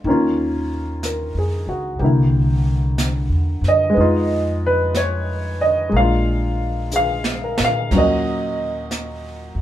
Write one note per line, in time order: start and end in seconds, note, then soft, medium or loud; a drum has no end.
0.04 1.31 D#2 medium
0.04 2.01 D#3 medium
0.04 2.00 A#3 medium
0.04 brush sweep soft
0.09 2.02 C#4 medium
0.09 2.03 F4 medium
1.03 1.67 A#4 soft
1.03 brush sweep soft
1.03 snare soft
1.03 hi-hat pedal soft
1.34 1.65 F2 medium
1.34 1.88 G#4 soft
1.67 1.98 C#2 medium
1.67 2.20 F#4 soft
1.99 3.27 C2 medium
1.99 3.97 D3 soft
1.99 3.96 A#3 soft
1.99 3.96 G4 soft
1.99 brush sweep soft
2.04 3.98 E4 soft
2.98 brush sweep soft
2.98 snare soft
2.98 hi-hat pedal medium
3.29 3.60 E2 medium
3.61 3.93 F#2 medium
3.61 snare soft
3.68 4.60 D#5 medium
3.90 5.88 G#3 medium
3.94 5.89 F2 medium
3.94 5.92 B3 medium
3.94 5.93 D#4 medium
3.94 brush sweep soft
4.01 5.95 F4 medium
4.66 4.95 B4 medium
4.95 5.61 C#5 medium
4.95 brush sweep soft
4.95 snare soft
4.95 hi-hat pedal soft
5.61 5.92 D#5 medium
5.89 7.56 A#1 medium
5.89 7.90 G#3 soft
5.89 7.91 A#3 soft
5.89 brush sweep soft
5.96 7.94 D4 soft
5.96 7.95 F4 medium
5.96 6.36 F5 medium
6.91 7.72 G#4 soft
6.91 hi-hat pedal medium
6.96 7.63 F5 medium
7.24 snare soft
7.44 7.95 A#4 soft
7.58 7.89 A#2 medium
7.58 snare medium
7.64 7.95 F5 medium
7.91 9.53 D#2 medium
7.91 9.62 A#2 soft
7.91 9.62 F#3 soft
7.91 9.62 C#4 soft
7.91 brush sweep soft
7.91 kick medium
7.91 snare soft
7.91 ride soft
7.96 9.62 F#4 medium
7.96 9.62 A#4 medium
7.96 9.62 D#5 medium
8.91 brush sweep soft
8.91 snare soft
8.91 hi-hat pedal soft
9.55 9.62 E2 medium